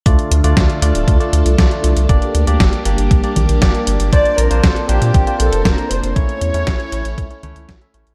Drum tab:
HH |xxxxxxxxxxxxxxxx|xxxxxxxxxxxxxxxx|xxxxxxxxxxxxxxxx|xxxxxxxxxxxxxxxx|
SD |----o-------o---|----o-------o---|----o-------o---|----o-------o---|
CG |----------------|----------o-----|----------------|----------o-----|
BD |o---o---o---o---|o---o---o---o---|o---o---o---o---|o---o---o---o---|